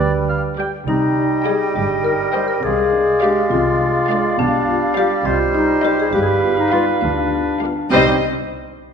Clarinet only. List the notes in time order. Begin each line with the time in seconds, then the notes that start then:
Already playing: B4
0.87 D#4
1.45 G#4
1.75 G4
2.03 A#4
2.33 C5
2.49 A#4
2.64 G#4
3.22 G4
3.44 G4
3.52 F4
4.39 D4
4.96 G4
5.25 F4
5.55 D#4
5.85 G4
6.01 G#4
6.14 G4
6.22 G#4
6.28 G4
6.60 D#4
6.73 F4
7.03 D4
7.92 C4